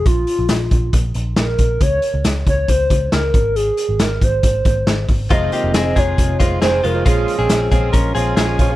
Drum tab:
HH |xxxxxxxx|xxxxxxxx|xxxxxxxo|xxxxxxxx|
SD |--o---o-|--o---o-|--o---o-|--o---o-|
BD |o--oo--o|o--ooo-o|---ooo-o|o--ooo--|

HH |xxxxxxxx|
SD |--o---o-|
BD |o--oo--o|